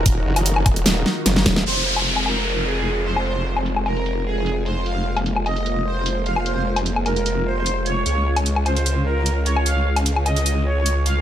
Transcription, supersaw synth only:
X:1
M:4/4
L:1/8
Q:1/4=150
K:Fphr
V:1 name="Supersaw synth"
z8 | c z2 B2 A2 c | c z2 B2 A2 c | f z2 e2 c2 f |
c z2 B2 c2 d | d z2 c2 B2 d | f z2 e2 d2 f |]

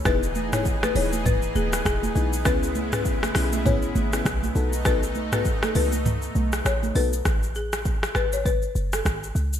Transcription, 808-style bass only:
X:1
M:4/4
L:1/8
Q:"Swing 16ths" 1/4=100
K:Alyd
V:1 name="808-style bass" clef=bass
E,,,3 D,,,2 D,,, E,,, B,,, | C,,3 B,,,2 G,,, B,,, B,,,- | B,,,3 C,,2 B,,, A,,, B,,, | A,,,3 G,,,2 F,,, G,,, C,, |]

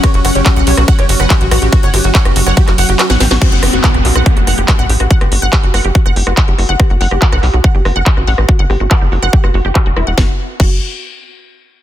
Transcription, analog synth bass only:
X:1
M:4/4
L:1/16
Q:1/4=142
K:Edor
V:1 name="Analog synth bass" clef=bass
z F,,, F,,, F,,, z B,,, B,,, B,,, z F,,, F,,, F,,, z A,,, A,,, A,,, | z G,,, G,,, G,,, z F,,, F,,, F,,, z F,,, F,,, F,,, z A,,, A,,, A,,, | z F,,, F,,, F,,, z B,,, B,,, B,,, z F,,, F,,, F,,, z A,,, A,,, A,,, | z G,,, G,,, G,,, z F,,, F,,, F,,, z F,,, F,,, F,,, z F,,, F,,, F,,, |
z F,,, F,,, F,,, z B,,, B,,, B,,, z F,,, F,,, F,,, z A,,, A,,, A,,, | z G,,, G,,, G,,, z F,,, F,,, F,,, z F,,, F,,, F,,, z E,,, E,,, E,,, | F,,, z3 F,,,2 z8 z2 |]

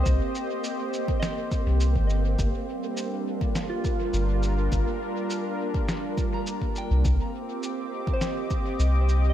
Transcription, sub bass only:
X:1
M:4/4
L:1/16
Q:1/4=103
K:Gm
V:1 name="Sub bass" clef=bass
C,, z8 z2 C,,2 G,,,3 | G,,, z8 z3 G,,,4 | G,,, z12 z2 C,, | C,, z8 z3 C,,4 |]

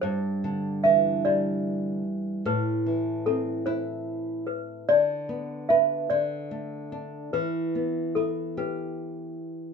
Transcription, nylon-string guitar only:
X:1
M:6/8
L:1/8
Q:3/8=49
K:Clyd
V:1 name="Nylon-string guitar" clef=bass
G,, D, E, G,3 | A,, E, C E3 | D, B, B D, A, D | E, B, E G3 |]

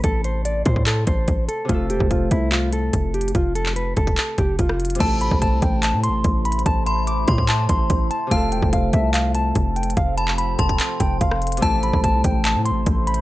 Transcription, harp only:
X:1
M:4/4
L:1/8
Q:1/4=145
K:Am
V:1 name="Harp"
[C,A,EA]8 | [C,A,FA]8- | [C,A,FA]8 | [C,A,EA]8- |
[C,A,EA]8 | [C,A,FA]8- | [C,A,FA]8 | [C,A,EA]8 |]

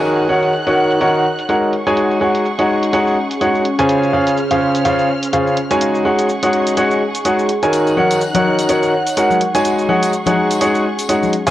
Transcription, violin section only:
X:1
M:4/4
L:1/8
Q:"Swing 16ths" 1/4=125
K:Ebdor
V:1 name="Violin section"
[Edg']6- [Edg'] [Agd']- | [Agd']8 | [Dcf']8 | [Agd']8 |
[Edg']6- [Edg'] [Agd']- | [Agd']8 |]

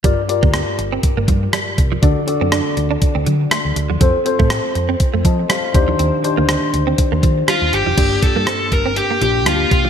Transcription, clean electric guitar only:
X:1
M:4/4
L:1/16
Q:"Swing 16ths" 1/4=121
K:Gm
V:1 name="Clean electric guitar"
G, z2 B, C z2 C z B, F, z G, z2 F, | D z2 C D z2 D z C ^F, z A, z2 F, | F, z2 A, C z2 C z A, F, z G, z2 F, | C z2 B, C z2 C z B, F, z G, z2 F, |
G, z2 B, C z2 C z B, F, z G, z2 F, |]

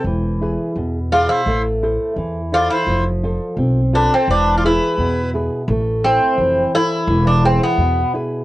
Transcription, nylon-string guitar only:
X:1
M:2/4
L:1/8
Q:1/4=85
K:none
V:1 name="Nylon-string guitar"
E, [E^GB] B,, [EGB] | A, [EAc] E, [EAc] | F, [FAc] C [FAc] | E, [E^GB] B,, [EGB] |
A, [EAc] E, [EAc] | E, [E^GB] B,, [EGB] |]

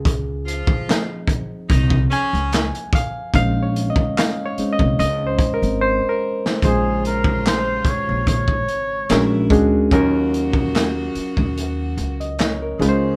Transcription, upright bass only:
X:1
M:4/4
L:1/16
Q:"Swing 16ths" 1/4=73
K:Bbm
V:1 name="Upright bass" clef=bass
D,,3 z4 z C,,2 z D,,2 z3 | B,,,3 z4 C,, D,,2 z A,,,2 z3 | B,,,6 z B,,,3 A,,,2 B,,,2 =D,,2 | E,,6 z E,,3 D,,4 D,,2 |]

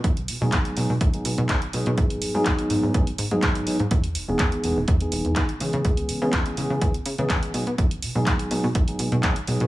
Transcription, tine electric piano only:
X:1
M:4/4
L:1/16
Q:1/4=124
K:Bmix
V:1 name="Tine electric piano"
z3 [F,G,B,DG]3 [F,G,B,DG] z2 [F,G,B,DG]3 [F,G,B,DG] z [F,G,B,DG]2- | [F,G,B,DG]3 [F,G,B,DG]3 [F,G,B,DG]2 [F,G,B,DG] z2 [F,G,B,DG]3 [F,G,B,DG] z | z3 [E,G,B,DG]3 [E,G,B,DG] z2 [E,G,B,DG]3 [E,G,B,DG] z [E,G,B,CG]2- | [E,G,B,CG]3 [E,G,B,CG]3 [E,G,B,CG]2 [E,G,B,CG] z2 [E,G,B,CG]3 [F,G,B,DG] z |
z3 [F,G,B,DG]3 [F,G,B,DG] z2 [F,G,B,DG]3 [F,G,B,DG] z [F,G,B,DG]2 |]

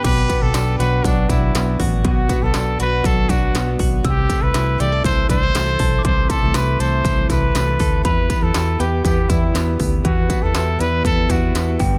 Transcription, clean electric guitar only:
X:1
M:4/4
L:1/16
Q:1/4=120
K:Bphr
V:1 name="Clean electric guitar"
B,,2 B,2 D2 F2 F,2 D2 B,2 F2 | B,,2 B,2 D2 F2 F,2 D2 B,2 F2 | C,2 A,2 E2 G A E,2 D E A,2 A2 | C,2 A,2 E2 A2 E,2 E2 A,2 A2 |
E,2 B,2 E2 G2 B,2 E2 B,4 | E,2 B,2 E4 B,2 E2 B,2 G,,2 |]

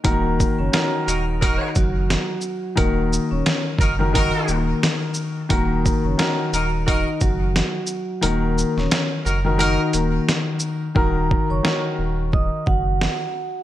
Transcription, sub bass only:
X:1
M:4/4
L:1/16
Q:"Swing 16ths" 1/4=88
K:Ebm
V:1 name="Sub bass" clef=bass
E,,,3 G,,, z2 E,,,4 G,,,3 z3 | E,,,3 E,,, z2 G,,,4 E,,,2 z4 | E,,,3 G,,, z2 E,,,4 G,,,3 z3 | E,,,3 E,,, z2 G,,,4 E,,,2 z4 |
E,,,3 G,,, z2 E,,,4 G,,,3 z3 |]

